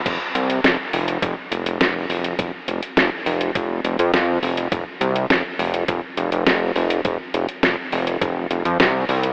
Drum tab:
CC |x---------------|----------------|----------------|----------------|
HH |x-xxx-oxx-xxx-ox|x-xxx-oxx-xxx-ox|x-xxx-oxx-xxx-ox|x-xxx-oxx-xxx-ox|
SD |----o-------o---|----o-------o---|----o-------o---|----o-------o---|
BD |o-------o-------|o-------o-------|o-------o-------|o-------o-------|